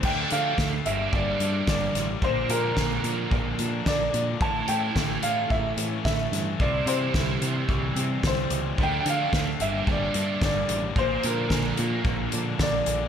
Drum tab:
CC |x-------|--------|--------|--------|
HH |-x-x-x-x|-x-x-x-x|-x-x-x-x|-x-x-x-x|
SD |--o---oo|--o---o-|--o---oo|--o---o-|
BD |o-o-o-o-|o-o-o-o-|o-o-o-o-|o-o-o-o-|

CC |--------|--------|
HH |-x-x-x-x|-x-x-x-x|
SD |--o---o-|--o---o-|
BD |o-o-o-o-|o-o-o-o-|